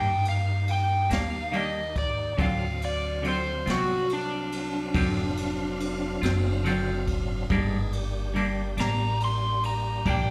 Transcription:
Already playing: upright bass G2, tonewheel organ A#3 D#4 G4, electric slide guitar G5
0.25 electric slide guitar F5, ride
0.68 electric slide guitar G5, ride
1.10 upright bass D#2, clean electric guitar G3 A#3 D4, electric slide guitar F5, snare, ride
1.52 clean electric guitar D#3 G3 A#3 D4, ride
1.57 electric slide guitar D#5
1.96 electric slide guitar D5, kick, ride
2.37 upright bass D2, clean electric guitar D3 F#3 C4 F4, tonewheel organ F#3 C4 D4 F5, kick, ride
2.42 electric slide guitar F5
2.82 electric slide guitar D5, ride
3.22 clean electric guitar D3 F#3 C4 F4, ride
3.28 electric slide guitar C5
3.66 upright bass C2, clean electric guitar F#3 C4 F4, snare, ride
3.71 electric slide guitar F#4
4.09 electric slide guitar D4, ride
4.52 ride
4.94 upright bass F1, clean electric guitar D3 F#3 C4 F4, kick, ride
5.37 ride
5.80 ride
6.22 upright bass F#1, clean electric guitar F#3 C4 F4, ride
6.26 snare
6.64 clean electric guitar D3 F#3 C4 F4, ride
7.08 kick, ride
7.49 upright bass G1, clean electric guitar G2 G3 A#3 D4, tonewheel organ G#3 B3 D#4 G#4, kick, ride
7.92 tonewheel organ G3 A#3 D4 G4, ride
8.34 clean electric guitar G2 G3 A#3 D4, ride
8.77 upright bass A1, clean electric guitar G3 A#3 D4, electric slide guitar A#5, snare, ride
9.21 electric slide guitar C6, ride
9.63 electric slide guitar A#5, ride
10.05 upright bass A#1, clean electric guitar G2 G3 A#3 D4, kick, ride
10.09 electric slide guitar G5

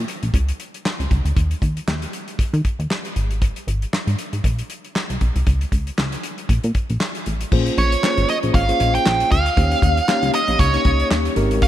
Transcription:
0.08 closed hi-hat
0.23 analog synth bass A#1, closed hi-hat
0.34 analog synth bass C#2, kick, closed hi-hat
0.49 closed hi-hat
0.60 closed hi-hat
0.74 closed hi-hat
0.86 snare, clap
0.99 analog synth bass C#2, closed hi-hat
1.11 analog synth bass C#2, kick, closed hi-hat
1.25 analog synth bass D2, closed hi-hat
1.36 analog synth bass D#2, kick, closed hi-hat
1.51 closed hi-hat
1.62 analog synth bass D#2, kick, closed hi-hat
1.77 closed hi-hat
1.88 analog synth bass D#2, snare, clap
2.02 closed hi-hat
2.13 closed hi-hat
2.28 closed hi-hat
2.39 analog synth bass D#3, kick, closed hi-hat
2.53 analog synth bass D#3, closed hi-hat
2.65 kick, closed hi-hat
2.79 analog synth bass D#2, closed hi-hat
2.91 snare, clap
3.05 closed hi-hat
3.16 analog synth bass G#1, closed hi-hat
3.31 closed hi-hat
3.42 kick, closed hi-hat
3.56 closed hi-hat
3.67 analog synth bass G#1, closed hi-hat
3.82 closed hi-hat
3.93 analog synth bass G#2, snare, clap
4.07 analog synth bass G#2, closed hi-hat
4.19 closed hi-hat
4.33 analog synth bass G#2, closed hi-hat
4.44 analog synth bass A#1, kick, closed hi-hat
4.59 closed hi-hat
4.70 closed hi-hat
4.85 closed hi-hat
4.96 snare, clap
5.10 analog synth bass C2, closed hi-hat
5.21 analog synth bass B1, kick, closed hi-hat
5.36 analog synth bass C2, closed hi-hat
5.47 analog synth bass C#2, kick, closed hi-hat
5.61 closed hi-hat
5.72 analog synth bass C#2, kick, closed hi-hat
5.87 closed hi-hat
5.98 analog synth bass C#2, snare, clap
6.12 closed hi-hat
6.23 closed hi-hat
6.38 closed hi-hat
6.49 analog synth bass A#1, kick, closed hi-hat
6.64 analog synth bass A#2, closed hi-hat
6.75 kick, closed hi-hat
6.90 analog synth bass A#1, closed hi-hat
7.00 snare, clap
7.15 closed hi-hat
7.26 analog synth bass A1, closed hi-hat
7.41 closed hi-hat
7.52 analog synth bass A#1, tine electric piano A#3 C#4 F4 G#4 C5, kick, crash
7.66 closed hi-hat
7.78 analog synth bass A#1, lead electric guitar C#5, closed hi-hat
7.92 closed hi-hat
8.03 tine electric piano A#3 C#4 F4 G#4 C5, snare, clap
8.17 analog synth bass G#1, closed hi-hat
8.29 lead electric guitar D#5, closed hi-hat
8.43 analog synth bass A#1, tine electric piano A#3 C#4 F4 G#4 C5, closed hi-hat
8.54 analog synth bass G#1, lead electric guitar F5, kick, closed hi-hat
8.68 tine electric piano A#3 C#4 F4 G#4 C5, closed hi-hat
8.80 analog synth bass A#1, closed hi-hat
8.95 lead electric guitar G5, closed hi-hat
9.06 analog synth bass A#1, snare, clap
9.20 closed hi-hat
9.32 analog synth bass D2, lead electric guitar F5, kick, closed hi-hat
9.46 closed hi-hat
9.56 analog synth bass D#2, tine electric piano A#3 C#4 D#4 G4 C5, kick, closed hi-hat
9.64 tine electric piano C#5
9.71 closed hi-hat
9.82 analog synth bass D#2, kick, closed hi-hat
9.97 closed hi-hat
10.08 tine electric piano A#3 C#4 D#4 G4 C#5, snare, clap
10.22 analog synth bass C#2, closed hi-hat
10.34 lead electric guitar D#5, closed hi-hat
10.48 analog synth bass A#1, tine electric piano A#3 C#4 D#4 G4 C#5, closed hi-hat
10.59 analog synth bass C#2, lead electric guitar C#5, kick, closed hi-hat
10.74 tine electric piano A#3 C#4 D#4 G4 C#5, closed hi-hat
10.85 analog synth bass C#2, kick, closed hi-hat
11.00 closed hi-hat
11.11 analog synth bass D#2, snare, clap
11.25 closed hi-hat
11.36 analog synth bass G#1, tine electric piano G#3 C4 D#4 G4 A#4, closed hi-hat
11.51 closed hi-hat
11.62 lead electric guitar F5, kick, closed hi-hat

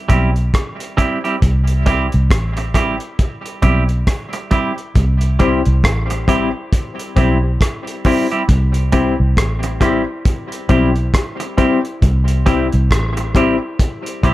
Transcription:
0.09 fingered electric bass B1, clean electric guitar G3 C4 E4 G4, kick, closed hi-hat
0.36 closed hi-hat
0.54 kick, cross-stick, closed hi-hat
0.80 closed hi-hat
0.97 clean electric guitar G3 C4 E4 G4, kick, closed hi-hat
1.24 clean electric guitar G3 C4 E4 G4, closed hi-hat
1.42 fingered electric bass C2, kick, closed hi-hat
1.67 closed hi-hat
1.86 clean electric guitar G3 C4 E4 G4, kick, closed hi-hat
2.12 fingered electric bass C2, closed hi-hat
2.31 fingered electric bass A1, kick, cross-stick, closed hi-hat
2.57 muted clean electric guitar stroke, closed hi-hat
2.74 clean electric guitar G3 C4 E4 G4, kick, cross-stick, closed hi-hat
3.00 closed hi-hat
3.19 kick, closed hi-hat
3.46 closed hi-hat
3.62 fingered electric bass B1, clean electric guitar G3 C4 E4 G4, kick, closed hi-hat
3.89 closed hi-hat
4.07 kick, cross-stick, closed hi-hat
4.33 muted clean electric guitar stroke, closed hi-hat
4.51 clean electric guitar G3 C4 E4 G4, kick, closed hi-hat
4.78 closed hi-hat
4.95 fingered electric bass C2, kick, closed hi-hat
5.21 closed hi-hat
5.39 clean electric guitar G3 C4 E4 G4, reed electric piano C4 E4 G4 C5, kick, closed hi-hat
5.65 fingered electric bass C2, closed hi-hat
5.84 fingered electric bass A1, kick, cross-stick, closed hi-hat
6.10 muted clean electric guitar stroke, closed hi-hat
6.28 clean electric guitar G3 C4 E4 G4, reed electric piano C4 E4 G4 C5, kick, closed hi-hat
6.73 kick, closed hi-hat
6.99 closed hi-hat
7.16 fingered electric bass B1, clean electric guitar G3 C4 E4 G4, reed electric piano C4 E4 G4 C5, kick, closed hi-hat
7.44 reed electric piano G4 C5
7.61 kick, cross-stick, closed hi-hat
7.87 closed hi-hat
8.05 clean electric guitar G3 C4 E4 G4, reed electric piano C4 E4 G4 C5, kick, open hi-hat
8.31 clean electric guitar G3 C4 E4 G4, closed hi-hat
8.49 fingered electric bass C2, kick, closed hi-hat
8.74 closed hi-hat
8.92 clean electric guitar G3 C4 E4 G4, reed electric piano C4 E4 G4 C5, kick, closed hi-hat
9.20 fingered electric bass C2
9.37 fingered electric bass A1, kick, cross-stick, closed hi-hat
9.63 muted clean electric guitar stroke, closed hi-hat
9.81 clean electric guitar G3 C4 E4 G4, reed electric piano C4 E4 G4 C5, kick, cross-stick, closed hi-hat
10.25 kick, closed hi-hat
10.52 closed hi-hat
10.69 fingered electric bass B1, clean electric guitar G3 C4 E4 G4, reed electric piano C4 E4 G4 C5, kick, closed hi-hat
10.96 closed hi-hat
11.14 kick, cross-stick, closed hi-hat
11.40 muted clean electric guitar stroke, closed hi-hat
11.58 clean electric guitar G3 C4 E4 G4, reed electric piano C4 E4 G4 C5, kick, closed hi-hat
11.85 closed hi-hat
12.02 fingered electric bass C2, kick, closed hi-hat
12.28 closed hi-hat
12.46 clean electric guitar G3 C4 E4 G4, reed electric piano C4 E4 G4 C5, kick, closed hi-hat
12.72 fingered electric bass C2, closed hi-hat
12.91 fingered electric bass A1, kick, cross-stick, closed hi-hat
13.17 muted clean electric guitar stroke, closed hi-hat
13.35 clean electric guitar G3 C4 E4 G4, reed electric piano C4 E4 G4 C5, kick, closed hi-hat
13.79 kick, closed hi-hat
14.06 closed hi-hat
14.23 fingered electric bass B1, clean electric guitar G3 C4 E4 G4, reed electric piano C4 E4 G4 C5, kick, closed hi-hat

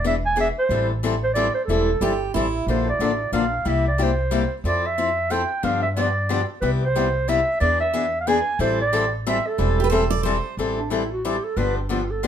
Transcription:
Already playing: upright bass E1
0.04 steel-string acoustic guitar E3 B3 D4 G#4, clarinet E5
0.26 clarinet G#5
0.36 steel-string acoustic guitar E3 B3 D4 G#4
0.41 clarinet E5
0.59 clarinet C5
0.69 upright bass A1, steel-string acoustic guitar E3 G3 C4 E4 A4
1.03 steel-string acoustic guitar E3 G3 C4 E4 A4
1.24 clarinet C5
1.34 steel-string acoustic guitar E3 G3 C4 E4 A4, clarinet D5
1.54 clarinet C5
1.65 upright bass E1, clarinet A4
1.69 steel-string acoustic guitar E3 G3 C4 E4 A4
2.01 upright bass G1, steel-string acoustic guitar E3 G3 C4 E4 G4 A4
2.34 upright bass A1, steel-string acoustic guitar E3 G3 C4 E4 A4
2.66 upright bass A#1, steel-string acoustic guitar D3 F3 A#3 D4 A4, clarinet C5
2.89 clarinet D5
2.99 upright bass A1, steel-string acoustic guitar D3 F3 A#3 D4 A4
3.32 upright bass A#1, steel-string acoustic guitar D3 F3 A#3 D4 A4, clarinet F5
3.65 upright bass C2, steel-string acoustic guitar C3 G3 A#3 E4 G4, clarinet E5
3.88 clarinet D5
3.98 steel-string acoustic guitar C3 G3 A#3 E4 G4
4.03 clarinet C5
4.31 steel-string acoustic guitar C3 G3 A#3 E4 G4
4.64 upright bass F2, steel-string acoustic guitar F3 C4 E4 A4, clarinet D5
4.86 clarinet E5
4.98 steel-string acoustic guitar F3 C4 E4 A4
5.30 steel-string acoustic guitar F3 C4 E4 A4, clarinet G5
5.63 upright bass G2, steel-string acoustic guitar D3 F3 B3 D4 G4, clarinet F5
5.82 clarinet E5
5.96 steel-string acoustic guitar D3 F3 B3 D4 G4, clarinet D5
6.29 steel-string acoustic guitar D3 F3 B3 D4 G4
6.61 upright bass C2, steel-string acoustic guitar C3 G3 B3 E4 G4, clarinet B4
6.82 clarinet C5
6.95 steel-string acoustic guitar C3 G3 B3 E4 G4
7.28 steel-string acoustic guitar C3 G3 B3 E4 G4, clarinet E5
7.60 upright bass E2, steel-string acoustic guitar E3 B3 D4 G#4, clarinet D5
7.81 clarinet E5
7.93 steel-string acoustic guitar E3 B3 D4 G#4
8.21 clarinet F5
8.27 steel-string acoustic guitar E3 B3 D4 G#4, clarinet G#5
8.59 upright bass A1, steel-string acoustic guitar E3 G3 C4 E4 A4, clarinet C5
8.81 clarinet D5
8.93 steel-string acoustic guitar E3 G3 C4 E4 A4
9.27 steel-string acoustic guitar E3 G3 C4 E4 A4, clarinet E5
9.47 clarinet A4
9.58 upright bass E1, steel-string acoustic guitar E3 G3 C4 E4 A4
9.80 steel-string acoustic guitar G4 B4
9.90 steel-string acoustic guitar E3 G3 C4 E4 A4 C5
10.10 steel-string acoustic guitar D5
10.23 steel-string acoustic guitar E3 G3 C4 E4 A4 C5
10.57 upright bass A1, steel-string acoustic guitar E3 G3 C4 E4 A4
10.78 clarinet D4
10.90 steel-string acoustic guitar E3 G3 C4 E4 A4, clarinet E4
11.12 clarinet F#4
11.25 steel-string acoustic guitar E3 G3 C4 E4 A4, clarinet G4
11.44 clarinet A4
11.57 upright bass G1, steel-string acoustic guitar D3 F3 B3 D4 G4, clarinet B4
11.78 clarinet D4
11.89 steel-string acoustic guitar D3 F3 B3 D4 G4, clarinet F4
12.11 clarinet A4
12.23 steel-string acoustic guitar D3 F3 B3 D4 G4

